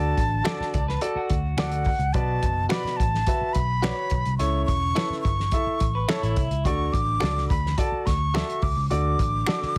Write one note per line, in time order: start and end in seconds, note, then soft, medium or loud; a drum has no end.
0.00 0.13 D2 loud
0.00 0.71 D3 medium
0.00 0.19 F#4 medium
0.00 0.19 A4 medium
0.00 0.19 D5 medium
0.00 1.31 A5 medium
0.17 0.41 A1 medium
0.17 kick medium
0.17 closed hi-hat medium
0.44 0.74 F#4 medium
0.44 0.57 F#4 medium
0.44 0.75 A4 medium
0.44 0.57 A4 medium
0.44 0.75 D5 medium
0.44 0.57 D5 medium
0.44 finger snap medium
0.44 snare loud
0.44 closed hi-hat medium
0.60 muted picked electric bass stroke soft
0.60 snare soft
0.74 0.97 C#2 medium
0.74 0.88 D5 medium
0.74 kick loud
0.74 closed hi-hat medium
0.88 1.02 B4 medium
0.88 snare soft
1.01 1.31 F#4 medium
1.01 1.31 A4 medium
1.01 1.16 A4 medium
1.01 1.31 D5 medium
1.01 closed hi-hat medium
1.15 1.97 F#4 medium
1.15 muted picked electric bass stroke soft
1.30 1.54 D2 medium
1.30 kick medium
1.30 closed hi-hat medium
1.57 1.93 D2 medium
1.57 1.70 F#4 medium
1.57 1.88 F#4 medium
1.57 1.88 A4 medium
1.57 1.70 A4 medium
1.57 1.88 D5 medium
1.57 1.70 D5 medium
1.57 2.14 F#5 medium
1.57 finger snap medium
1.57 snare loud
1.57 closed hi-hat medium
1.72 closed hi-hat soft
1.84 kick medium
1.84 open hi-hat soft
1.99 2.12 C#2 medium
1.99 closed hi-hat soft
2.13 2.38 B1 medium
2.13 2.95 B2 medium
2.13 2.44 F#4 medium
2.13 2.44 B4 medium
2.13 2.44 D5 medium
2.13 2.69 A5 medium
2.13 kick medium
2.13 closed hi-hat medium
2.42 2.66 F#1 medium
2.42 kick medium
2.42 closed hi-hat medium
2.69 2.82 F#4 medium
2.69 3.00 F#4 medium
2.69 2.82 B4 medium
2.69 3.00 B4 medium
2.69 2.83 D5 medium
2.69 3.01 D5 medium
2.69 2.98 B5 medium
2.69 finger snap medium
2.69 snare loud
2.69 closed hi-hat medium
2.84 muted picked electric bass stroke soft
2.84 snare soft
2.97 3.23 A1 medium
2.97 3.55 A5 medium
2.97 kick medium
2.97 closed hi-hat medium
3.15 snare soft
3.27 3.56 F#4 medium
3.27 3.57 B4 medium
3.27 3.57 E5 medium
3.27 kick medium
3.27 closed hi-hat medium
3.41 muted picked electric bass stroke soft
3.53 3.90 B1 medium
3.53 4.37 B5 loud
3.53 kick medium
3.53 closed hi-hat medium
3.82 3.94 F#4 medium
3.82 4.12 F#4 medium
3.82 3.95 B4 medium
3.82 4.13 B4 medium
3.82 4.13 C#5 medium
3.82 3.95 D5 medium
3.82 finger snap medium
3.82 snare loud
3.82 closed hi-hat medium
4.10 4.23 B1 medium
4.10 kick medium
4.10 closed hi-hat medium
4.25 4.38 C2 medium
4.25 closed hi-hat soft
4.38 4.63 C#2 loud
4.38 5.21 C#3 medium
4.38 4.69 E4 medium
4.38 4.69 A4 medium
4.38 4.69 C#5 medium
4.38 4.65 C#6 loud
4.38 closed hi-hat medium
4.66 4.92 E1 medium
4.66 5.19 C#6 loud
4.66 kick medium
4.66 closed hi-hat medium
4.95 5.07 E4 medium
4.95 5.26 E4 medium
4.95 5.07 A4 medium
4.95 5.26 A4 medium
4.95 5.26 B4 medium
4.95 5.08 C#5 medium
4.95 finger snap medium
4.95 snare loud
4.95 closed hi-hat medium
5.10 muted picked electric bass stroke soft
5.10 snare soft
5.21 5.48 G1 medium
5.21 6.32 C#6 medium
5.21 kick medium
5.25 closed hi-hat medium
5.40 snare soft
5.51 5.82 E4 medium
5.51 5.82 A4 medium
5.51 5.82 E5 medium
5.51 kick medium
5.51 closed hi-hat medium
5.67 muted picked electric bass stroke soft
5.80 6.04 A1 medium
5.80 kick medium
5.80 closed hi-hat medium
5.95 6.08 B4 medium
6.08 6.38 E4 medium
6.08 6.20 E4 medium
6.08 6.22 A4 medium
6.08 6.38 A4 medium
6.08 6.20 A4 medium
6.08 6.39 C#5 medium
6.08 6.21 C#5 medium
6.08 finger snap medium
6.08 snare medium
6.08 closed hi-hat medium
6.22 6.35 A1 medium
6.22 6.63 E4 medium
6.22 closed hi-hat soft
6.36 6.49 C2 medium
6.36 kick medium
6.36 closed hi-hat medium
6.51 6.63 C#2 medium
6.51 closed hi-hat soft
6.65 6.89 D2 loud
6.65 7.46 D3 medium
6.65 6.95 F#4 medium
6.65 6.95 A4 medium
6.65 6.95 D5 medium
6.65 6.94 C#6 medium
6.65 kick medium
6.65 closed hi-hat medium
6.93 7.17 A1 medium
6.93 7.49 D6 loud
6.93 kick medium
6.93 closed hi-hat medium
7.20 7.45 C#2 medium
7.20 7.32 F#4 medium
7.20 7.50 F#4 medium
7.20 7.33 A4 medium
7.20 7.51 A4 medium
7.20 7.33 D5 medium
7.20 7.51 D5 medium
7.20 finger snap medium
7.20 snare loud
7.20 closed hi-hat medium
7.38 snare soft
7.49 7.73 D2 medium
7.49 7.80 B5 medium
7.49 kick loud
7.49 closed hi-hat medium
7.66 snare soft
7.77 8.07 F#4 medium
7.77 8.08 A4 medium
7.77 8.08 D5 medium
7.77 8.08 A5 medium
7.77 kick medium
7.77 closed hi-hat medium
7.92 muted picked electric bass stroke soft
8.06 8.41 D2 medium
8.06 8.64 C#6 medium
8.06 kick medium
8.06 snare soft
8.06 closed hi-hat medium
8.34 8.63 F#4 medium
8.34 8.46 F#4 medium
8.34 8.64 A4 medium
8.34 8.46 A4 medium
8.34 8.46 D5 medium
8.34 8.64 E5 medium
8.34 finger snap medium
8.34 snare medium
8.34 closed hi-hat medium
8.50 closed hi-hat soft
8.62 8.74 C#2 medium
8.62 8.89 D6 medium
8.62 kick medium
8.62 open hi-hat soft
8.76 8.88 C#2 medium
8.89 9.14 D2 medium
8.89 9.72 D3 medium
8.89 9.20 F#4 medium
8.89 9.20 A4 medium
8.89 9.20 D5 medium
8.89 9.78 D6 loud
8.89 closed hi-hat medium
9.19 9.43 A1 medium
9.19 kick medium
9.19 closed hi-hat medium
9.46 9.59 F#4 medium
9.46 9.77 F#4 medium
9.46 9.59 A4 medium
9.46 9.77 A4 medium
9.46 9.59 D5 medium
9.46 9.77 D5 medium
9.46 finger snap medium
9.46 snare loud
9.46 closed hi-hat medium
9.62 muted picked electric bass stroke soft
9.62 snare soft